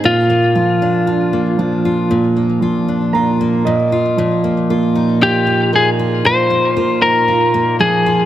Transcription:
<<
  \new Staff \with { instrumentName = "Lead electric guitar" } { \time 4/4 \key bes \mixolydian \tempo 4 = 58 f'2 r2 | r4 g'8 aes'8 c''8. bes'8. aes'8 | }
  \new Staff \with { instrumentName = "Steel-string acoustic guitar" } { \time 4/4 \key bes \mixolydian bes,16 bes16 f'16 d'16 f'16 bes16 d'16 f'16 bes,16 bes16 f'16 d'16 f'16 bes16 bes,16 f'16 | bes,16 bes16 f'16 ees'8 bes16 ees'16 f'16 bes,16 bes16 f'16 ees'16 f'16 bes16 ees'16 f'16 | }
  \new Staff \with { instrumentName = "Grand piano" } { \clef bass \time 4/4 \key bes \mixolydian bes,8 f8 d'8 f8 bes,8 f8 <bes, bes''>8 <bes, ees''>8 | f8 bes8 f'8 bes8 f'8 bes8 f'8 f8 | }
>>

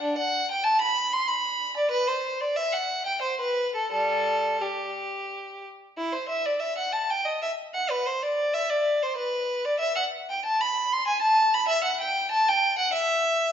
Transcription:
\new Staff \with { instrumentName = "Violin" } { \time 3/4 \key g \major \tempo 4 = 94 d'16 fis''8 g''16 a''16 b''8 c'''16 b''8. d''16 | b'16 c''8 d''16 e''16 fis''8 g''16 c''16 b'8 a'16 | <g a'>4 g'4. r8 | \key e \minor e'16 c''16 e''16 d''16 e''16 fis''16 a''16 g''16 dis''16 e''8 fis''16 |
b'16 c''16 d''8 e''16 d''8 c''16 b'8. d''16 | e''16 fis''8 g''16 a''16 b''8 c'''16 gis''16 a''8 b''16 | e''16 fis''16 g''8 a''16 g''8 fis''16 e''4 | }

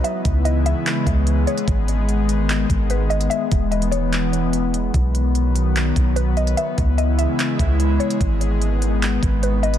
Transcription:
<<
  \new Staff \with { instrumentName = "Synth pluck" } { \time 4/4 \key cis \dorian \tempo 4 = 147 e''4 dis''8 e''8 r4. cis''8 | r2. b'8 dis''8 | e''4 dis''8 cis''8 r2 | r2. b'8 dis''8 |
e''4 dis''8 e''8 r4. cis''8 | r2. b'8 dis''8 | }
  \new Staff \with { instrumentName = "Analog synth pad" } { \clef bass \time 4/4 \key cis \dorian << { <cis e gis e'>1 | dis1 | <e b>1 | <dis b>1 |
<cis e gis e'>1 | <dis b>1 | } \\ { b1~ | b1 | r1 | fis1 |
r1 | r1 | } >> }
  \new Staff \with { instrumentName = "808-style bass" } { \clef bass \time 4/4 \key cis \dorian r8 cis,4~ cis,16 r8. cis,4 r8 | gis,,2~ gis,,8 gis,,4. | r8 e,,2.~ e,,8 | b,,2~ b,,8 b,,4. |
r8 cis,4~ cis,16 r8. cis,4 r8 | gis,,2~ gis,,8 gis,,4. | }
  \new DrumStaff \with { instrumentName = "Drums" } \drummode { \time 4/4 hh8 <hh bd>8 hh8 hh8 <hc hh>8 <hh bd>8 hh8 hh16 hh16 | <hh bd>8 hh8 hh8 hh8 <hc hh>8 <hh bd>8 hh8 hh16 hh16 | hh8 <hh bd>8 hh16 hh16 hh8 <hc hh>8 hh8 hh8 hh8 | <hh bd>8 hh8 hh8 hh8 <hc hh>8 <hh bd>8 hh8 hh16 hh16 |
hh8 <hh bd>8 hh8 hh8 <hc hh>8 <hh bd>8 hh8 hh16 hh16 | <hh bd>8 hh8 hh8 hh8 <hc hh>8 <hh bd>8 hh8 hh16 hh16 | }
>>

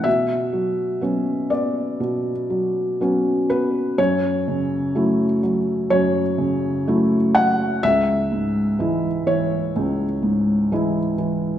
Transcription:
<<
  \new Staff \with { instrumentName = "Felt piano" } { \time 4/4 \key fis \minor \tempo 4 = 62 e''4. d''4. r8 b'8 | cis''2 cis''4. fis''8 | e''4. cis''4. r4 | }
  \new Staff \with { instrumentName = "Felt piano" } { \clef bass \time 4/4 \key fis \minor b,8 fis8 <fis b cis'>8 b8 b,8 fis8 <fis b cis'>8 b8 | fis,8 cis8 <fis a e'>8 fis8 fis,8 cis8 <fis a e'>8 fis8 | cis,8 gis,8 <e gis e'>8 e8 cis,8 gis,8 <e gis e'>8 e8 | }
>>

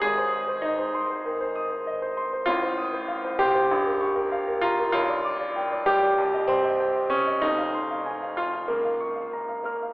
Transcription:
\new Staff \with { instrumentName = "Grand piano" } { \time 4/4 \key bes \dorian \tempo 4 = 97 << { <aes,, aes,>16 c''16 ees'''16 c''16 ees''16 c''16 c'''16 c''16 ees16 c''16 ees'''16 c''16 ees''16 c''16 c'''16 c''16 | <a,, a,>16 c''16 ees'''16 c''16 f''16 c''16 c'''16 c''16 bes,,16 bes'16 des'''16 bes'16 f''16 bes'16 bes''16 bes'16 | b,,16 d''16 d'''16 d''16 g''16 d''16 d'''16 d''16 c,16 ees''16 c'''16 ees''16 g''16 ees''16 ees'''16 ees''16 | <f,, f,>16 f''16 c'''16 f''16 aes''16 f''16 f'''16 f''16 des,16 f''16 des'''16 f''16 bes''16 f''16 f'''16 f''16 | } \\ { aes'4 ees'4 r2 | f'4. g'2 f'8 | f'4. g'4 c'4 des'8 | ees'4. f'8 bes4. bes8 | } >> }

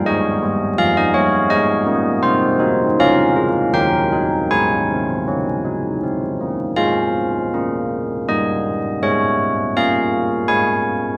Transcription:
<<
  \new Staff \with { instrumentName = "Church bells" } { \time 3/4 \key aes \major \tempo 4 = 81 << { ees''4 f''16 ees''16 des''8 ees''4 | c''4 f''4 g''4 | aes''2~ aes''8 r8 | f''2 ees''4 |
des''4 f''4 aes''4 | } \\ { des''2. | r4 bes'4 bes'4 | c''2. | c''2. |
r2. | } >> }
  \new Staff \with { instrumentName = "Church bells" } { \time 3/4 \key aes \major aes8 g8 f8 g8 aes8 bes8 | c'8 ees'8 des'8 f'8 ees8 ees'8 | aes8 c'8 des'8 ees'8 c'8 bes8 | aes4 bes4 g4 |
aes4 bes4 aes4 | }
>>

